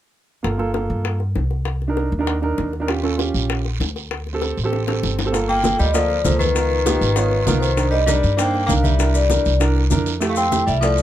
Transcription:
0.43 upright bass G1, grand piano A#3 F4 A4, high bongo
0.58 grand piano A#3 F4 A4, high bongo
0.74 grand piano A#3 F4 A4, high bongo
0.90 upright bass G2
1.05 high bongo
1.20 high bongo
1.35 upright bass C2, high bongo, low bongo
1.51 high bongo
1.65 high bongo
1.82 high bongo
1.88 grand piano D4 D#4 A#4
1.97 high bongo
2.12 upright bass D#2
2.19 grand piano D4 D#4 A#4
2.27 high bongo
2.42 grand piano D4 D#4 A#4, high bongo
2.58 upright bass D#2, high bongo, low bongo
2.73 high bongo
2.80 grand piano D4 D#4 A#4
2.87 grand piano C#4 F4 G4, high bongo, long guiro
3.03 grand piano C#4 F4 A4, high bongo
3.17 grand piano C#4 F4 G4, high bongo, short guiro
3.34 upright bass A#1, short guiro
3.50 high bongo, long guiro
3.65 high bongo
3.80 upright bass D2, high bongo, low bongo, short guiro
3.96 high bongo, short guiro
4.11 high bongo, long guiro
4.27 high bongo
4.33 grand piano C4 G4 A4
4.42 high bongo, short guiro
4.57 upright bass A1, short guiro
4.64 grand piano C4 G4 A4
4.73 high bongo, long guiro
4.87 grand piano C4 G4 A4, high bongo
5.03 upright bass G1, low bongo, short guiro
5.19 low bongo, short guiro
5.25 grand piano C4 G4 A4
5.32 grand piano A#3 F4 A4, high bongo, high conga, long guiro, maracas
5.48 tenor saxophone A#3, vibraphone G5, high bongo, high conga
5.63 grand piano A#3 F4 A4, high bongo, high conga, short guiro, maracas
5.79 upright bass D2, tenor saxophone G3, vibraphone D#5, high conga, short guiro, maracas
5.93 tenor saxophone F3, grand piano A#3 F4 A4, vibraphone D5, high bongo, high conga, long guiro, maracas
6.10 high bongo, high conga
6.24 upright bass C#2, tenor saxophone F3, grand piano A#3 F4 A4, vibraphone C5, high bongo, low bongo, high conga, short guiro, maracas
6.39 tenor saxophone D#3, vibraphone B4, high bongo, high conga, short guiro, maracas
6.54 grand piano B3 D#4 F4 A#4, high bongo, high conga, long guiro, maracas
6.71 high bongo, high conga
6.85 grand piano B3 D#4 F4 G4, high bongo, high conga, short guiro, maracas
7.01 upright bass G#1, short guiro, maracas
7.16 grand piano B3 D#4 F4 C#5, high bongo, high conga, long guiro, maracas
7.31 high bongo, high conga
7.46 upright bass C2, grand piano B3 D#4 F4 A#4, high bongo, low bongo, high conga, short guiro, maracas
7.60 tenor saxophone D#3, vibraphone C5, high bongo, short guiro, maracas
7.77 grand piano D4 D#4 A#4, high bongo, high conga, long guiro, maracas
7.90 tenor saxophone G3, vibraphone D#5, high bongo, high conga
8.06 tenor saxophone G3, grand piano D4 D#4 A#4, vibraphone D5, high bongo, high conga, short guiro, maracas
8.23 upright bass G2, high conga, short guiro, maracas
8.37 tenor saxophone A#3, grand piano D4 D#4 C5, vibraphone G5, high bongo, high conga, maracas
8.53 high bongo, high conga
8.66 upright bass C2, tenor saxophone A#3, grand piano D4 D#4 A#4, vibraphone F5, high bongo, low bongo, high conga, short guiro, maracas
8.82 tenor saxophone G3, vibraphone E5, high bongo, high conga, short guiro, maracas
8.99 grand piano D4 E4 A#4, high bongo, long guiro, maracas
9.13 tenor saxophone G3, vibraphone D5, high bongo, high conga, maracas
9.29 grand piano D4 E4 A#4, high bongo, high conga, short guiro, maracas
9.45 upright bass C2, short guiro, maracas
9.60 grand piano D4 E4 A#4, high bongo, high conga, long guiro, maracas
9.75 high bongo, high conga
9.90 upright bass F2, grand piano D4 E4 A#4, high bongo, low bongo, high conga, short guiro, maracas
10.06 high bongo, high conga, short guiro, maracas
10.20 grand piano A3 E4 G4, high bongo, high conga, long guiro, maracas
10.29 tenor saxophone A3, vibraphone F5
10.36 tenor saxophone C4, vibraphone G5, high bongo, high conga, maracas
10.51 grand piano A3 E4 G4, high bongo, high conga, short guiro, maracas
10.66 upright bass C2, tenor saxophone G3, vibraphone E5, high conga, short guiro, maracas
10.81 tenor saxophone F3, grand piano A3 E4 A4, vibraphone D5, high bongo, long guiro, maracas
10.98 high bongo, high conga, maracas

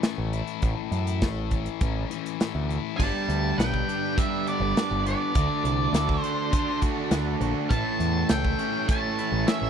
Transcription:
Already playing: distorted electric guitar E3 C#4
0.03 distorted electric guitar A3, snare, closed hi-hat
0.18 picked electric bass A1
0.33 distorted electric guitar E4, closed hi-hat
0.47 closed hi-hat
0.62 picked electric bass A1, distorted electric guitar A2, kick, closed hi-hat
0.91 picked electric bass F#2, distorted electric guitar E4, closed hi-hat
1.07 closed hi-hat
1.22 picked electric bass A1, distorted electric guitar A3, kick, snare, closed hi-hat
1.51 distorted electric guitar E3, kick, closed hi-hat
1.66 closed hi-hat
1.81 picked electric bass A1, distorted electric guitar C#4, kick, closed hi-hat
2.11 distorted electric guitar E3, closed hi-hat
2.26 closed hi-hat
2.40 distorted electric guitar A3, snare, closed hi-hat
2.55 picked electric bass D2
2.69 distorted electric guitar E4, closed hi-hat
2.96 picked electric bass G1, distorted electric guitar G2 D3 G3, tonewheel organ D4 G4 B4, lead electric guitar A5, kick, crash
3.00 overdriven electric guitar G3, tonewheel organ D5
3.29 picked electric bass D2, closed hi-hat
3.58 picked electric bass B1, overdriven electric guitar B4, lead electric guitar G5, snare, closed hi-hat
3.74 kick
3.88 overdriven electric guitar D4, closed hi-hat
4.15 distorted electric guitar G2 D3 G3, overdriven electric guitar G3, lead electric guitar E5, kick, closed hi-hat
4.47 overdriven electric guitar B3, lead electric guitar D5, closed hi-hat
4.60 picked electric bass G1
4.75 overdriven electric guitar D4, snare, closed hi-hat
4.91 picked electric bass G1
5.05 overdriven electric guitar B3, lead electric guitar D5, closed hi-hat
5.34 picked electric bass D2, distorted electric guitar D3 A3 D4, overdriven electric guitar D3, tonewheel organ D4 F#4 A4 D5, kick, closed hi-hat
5.64 picked electric bass C2, closed hi-hat
5.93 picked electric bass D2, overdriven electric guitar A4, snare, closed hi-hat
6.09 kick
6.20 overdriven electric guitar D4, lead electric guitar C5, closed hi-hat
6.52 distorted electric guitar D3 A3 D4, overdriven electric guitar D3, kick, closed hi-hat
6.82 overdriven electric guitar F#4, kick, closed hi-hat
7.11 picked electric bass D2, overdriven electric guitar D4, snare, closed hi-hat
7.40 picked electric bass A#1, overdriven electric guitar F#4, closed hi-hat
7.69 picked electric bass A1, distorted electric guitar A2 E3 A3, overdriven electric guitar A2, tonewheel organ C#4 E4 A4 C#5, lead electric guitar A5, kick, closed hi-hat
8.00 picked electric bass E2, closed hi-hat
8.29 picked electric bass C#2, overdriven electric guitar A4, lead electric guitar G5, snare, closed hi-hat
8.45 kick
8.58 overdriven electric guitar C#4, closed hi-hat
8.87 distorted electric guitar A2 E3 A3, overdriven electric guitar A3, lead electric guitar A5, kick, closed hi-hat
9.19 overdriven electric guitar E4, closed hi-hat
9.32 picked electric bass A1
9.48 overdriven electric guitar C#4, lead electric guitar E5, snare, closed hi-hat
9.62 picked electric bass A1, snare

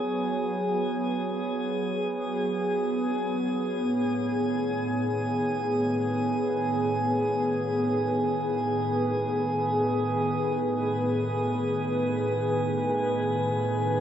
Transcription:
Already playing: analog synth pad F#3 B3 G#4 C#5, synth texture G#4 G#5
3.76 analog synth pad A2
4.24 analog synth pad D#3
5.30 analog synth pad B4

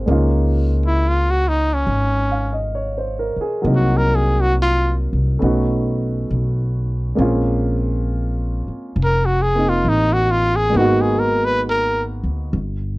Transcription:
Already playing: grand piano G#3 A#3 C4 D#4 F#4 G#4 A#4 C5
0.06 upright bass C#2, grand piano G#3 A#3 C#4 D#4
0.11 grand piano F4
0.86 trumpet E4
1.08 trumpet F4
1.31 trumpet F#4
1.49 trumpet D#4
1.74 trumpet C#4
1.87 upright bass G#1
2.31 grand piano F5
2.53 grand piano D#5
2.75 grand piano C#5
2.98 grand piano C5
3.19 grand piano A#4
3.36 muted upright bass stroke
3.41 grand piano G#4
3.62 upright bass C2, grand piano F#3 A#3 C4 D#4
3.67 grand piano A#4
3.75 trumpet F#4
3.97 trumpet A#4
4.16 trumpet G#4
4.41 trumpet F#4
4.62 trumpet F4
5.13 upright bass C2
5.39 upright bass B1, grand piano A3 B3 C#4 D#4
5.44 grand piano F#4
6.30 upright bass B1
7.15 upright bass A#1, grand piano G#3 A#3 C4 C#4
7.20 grand piano F4
8.68 muted upright bass stroke
8.96 upright bass F1
9.04 trumpet A#4
9.25 trumpet F#4
9.42 trumpet G#4
9.55 grand piano A#3 C4 D#4
9.69 trumpet F4
9.85 upright bass A1
9.89 trumpet D#4
10.13 trumpet F#4
10.31 trumpet F4
10.56 trumpet G#4
10.70 grand piano G#3 A#3
10.74 upright bass G#1, grand piano B3 D#4, trumpet F#4
10.81 grand piano F#4
11.01 trumpet G#4
11.20 trumpet A#4
11.45 trumpet B4
11.69 trumpet A#4
12.23 upright bass D2
12.53 upright bass G1

